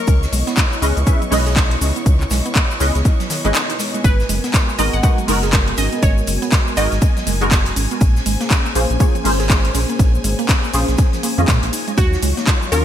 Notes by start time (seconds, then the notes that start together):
Already playing: A#4 D#5 C#6
0.07 C#2 G#3 B3 E4 C#5, kick, closed hi-hat, cabasa, shaker
0.22 snare, cabasa
0.32 B1 G#3, open hi-hat, cabasa, shaker
0.47 B3, snare, closed hi-hat, cabasa
0.57 kick, snare, clap, closed hi-hat, cabasa, shaker
0.73 cabasa
0.82 C#2 C#4 E4 G#4 B4 D#5, open hi-hat, cabasa, shaker
0.97 C#2, closed hi-hat, cabasa
1.06 C#4 E4 G#4 B4 E5, kick, closed hi-hat, cabasa, shaker
1.22 F#3, closed hi-hat, cabasa
1.31 B1 G#3 C#4 E4 G#4 B4 D#5, open hi-hat, cabasa
1.46 G#4, snare, closed hi-hat, cabasa
1.56 G#3, kick, snare, clap, closed hi-hat, cabasa, shaker
1.71 closed hi-hat
1.81 C#2 C#4, snare, open hi-hat, cabasa, shaker
1.96 B3, closed hi-hat, cabasa
2.06 C#2 G#3, kick, closed hi-hat, cabasa, shaker
2.21 clap, cabasa
2.30 B1 G#3, snare, open hi-hat, cabasa, shaker
2.46 B3, closed hi-hat, cabasa
2.56 kick, clap, closed hi-hat, cabasa, shaker
2.71 cabasa
2.80 C#2 C#4 E4 G#4 B4 D#5, snare, open hi-hat, cabasa, shaker
2.95 C#2, snare, closed hi-hat, cabasa
3.05 kick, closed hi-hat, cabasa, shaker
3.20 F#3, snare, closed hi-hat, cabasa
3.30 D#3, snare, open hi-hat, cabasa, shaker
3.44 G#1 G#3 C#4 E4 G#4 B4 D#5, closed hi-hat, cabasa
3.54 D#4, snare, clap, closed hi-hat, cabasa, shaker
3.70 D#4, closed hi-hat, cabasa
3.79 G#3, snare, open hi-hat, cabasa, shaker
3.94 G#3, closed hi-hat, cabasa
4.04 G#1 G#3 F#4 A#4 B4 G#5, kick, closed hi-hat, ride, cabasa, shaker
4.20 snare, cabasa
4.29 F#1 G#3, open hi-hat, ride, cabasa, shaker
4.44 B3, snare, closed hi-hat, cabasa
4.54 kick, snare, clap, closed hi-hat, ride, cabasa, shaker
4.69 cabasa
4.78 G#1 G#3 B3 D#4 F#4 A#4 D#5, open hi-hat, ride, cabasa, shaker
4.93 G#1 F#5, closed hi-hat, cabasa
5.03 G#3 B3 D#4 F#4 B4 F#5, kick, closed hi-hat, ride, cabasa, shaker
5.18 F#3, closed hi-hat, cabasa
5.27 F#1 G#3 B3 D#4 F#4 A#4, open hi-hat, ride, cabasa
5.43 G#4, snare, closed hi-hat, cabasa
5.52 G#3, kick, snare, clap, closed hi-hat, ride, cabasa, shaker
5.68 closed hi-hat
5.77 G#1 C#4 D#5, snare, open hi-hat, ride, cabasa, shaker
5.93 B3, closed hi-hat, cabasa
6.03 G#1 G#3 C#5, kick, closed hi-hat, ride, cabasa, shaker
6.18 cabasa
6.27 F#1 G#3, open hi-hat, ride, cabasa, shaker
6.42 B3, closed hi-hat, cabasa
6.52 kick, snare, clap, closed hi-hat, ride, cabasa, shaker
6.68 cabasa
6.77 G#1 G#3 B3 D#4 F#4 A#4 D#5, snare, open hi-hat, ride, cabasa, shaker
6.92 G#1, snare, closed hi-hat, cabasa
7.02 kick, closed hi-hat, ride, cabasa, shaker
7.17 F#3, snare, closed hi-hat, cabasa
7.27 F#1 G#3, open hi-hat, ride, cabasa, shaker
7.41 G#3 B3 D#4 F#4 G#4 A#4, closed hi-hat, cabasa
7.51 G#3, kick, snare, clap, closed hi-hat, ride, cabasa, shaker
7.65 closed hi-hat
7.76 G#1 C#4, open hi-hat, ride, cabasa, shaker
7.91 B3, closed hi-hat, cabasa
8.01 A#1 G#3 A#3 C#4 G#4 C5, kick, closed hi-hat, ride, cabasa, shaker
8.16 snare, cabasa
8.26 G#1 G#3, open hi-hat, ride, cabasa, shaker
8.40 A#3, snare, closed hi-hat, cabasa
8.51 kick, snare, clap, closed hi-hat, ride, cabasa, shaker
8.66 cabasa
8.75 A#1 A#3 C#4 F4 G#4 C5, open hi-hat, ride, cabasa, shaker
8.90 A#1, closed hi-hat, cabasa
9.00 A#3 C#4 F4 G#4 C#5, kick, closed hi-hat, ride, cabasa, shaker
9.15 F3, closed hi-hat, cabasa
9.24 G#1 G#3 A#3 C#4 F4 G#4 C5, open hi-hat, ride, cabasa
9.40 G#4, snare, closed hi-hat, cabasa
9.50 G#3, kick, snare, clap, closed hi-hat, ride, cabasa, shaker
9.65 closed hi-hat
9.74 A#1 C#4, snare, open hi-hat, ride, cabasa, shaker
9.89 A#3, closed hi-hat, cabasa
9.99 A#1 G#3, kick, closed hi-hat, ride, cabasa, shaker
10.15 cabasa
10.24 G#1 G#3, open hi-hat, ride, cabasa, shaker
10.39 A#3, closed hi-hat, cabasa
10.49 kick, snare, clap, closed hi-hat, ride, cabasa, shaker
10.64 cabasa
10.73 A#1 A#3 C#4 F4 G#4 C5, snare, open hi-hat, ride, cabasa, shaker
10.88 A#1, snare, closed hi-hat, cabasa
10.98 kick, closed hi-hat, ride, cabasa, shaker
11.13 F3, snare, closed hi-hat, cabasa
11.23 A#3, open hi-hat, ride, cabasa, shaker
11.38 F2 D#3 A#3 C#4 F4 G#4 D#5, closed hi-hat, cabasa
11.48 A#2 G#3, kick, snare, clap, closed hi-hat, ride, cabasa, shaker
11.63 A#1, closed hi-hat
11.73 F#3 D#4 F4 C#5, open hi-hat, ride, cabasa, shaker
11.88 G#3, closed hi-hat, cabasa
11.98 D#2 F#4 C#6, kick, closed hi-hat, ride, cabasa, shaker
12.13 snare, cabasa
12.22 C#2 G#3, open hi-hat, ride, cabasa, shaker
12.37 A#3, snare, closed hi-hat, cabasa
12.46 kick, snare, clap, closed hi-hat, ride, cabasa, shaker
12.63 cabasa
12.71 D#2 D#3 F#3 A#3 C#4 F4 A#4, open hi-hat, ride, cabasa, shaker